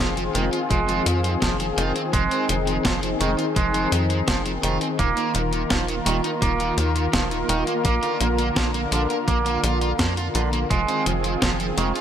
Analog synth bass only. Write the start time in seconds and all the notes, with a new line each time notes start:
0.00 F1
0.35 F1
0.71 F1
1.06 F2
1.42 F1
1.77 F1
2.13 F1
2.49 F1
2.85 F1
3.21 F1
3.56 F1
3.92 F2
4.28 F1
4.63 F1
4.99 D#1
5.35 D#1
5.71 D#1
6.06 D#1
6.42 D#1
6.78 D#2
7.13 D#1
7.49 D#1
7.85 A#1
8.21 A#1
8.56 A#1
8.92 A#1
9.28 A#1
9.64 A#1
9.99 F2
10.35 A#1
10.71 F1
11.06 F1
11.42 F1
11.78 F1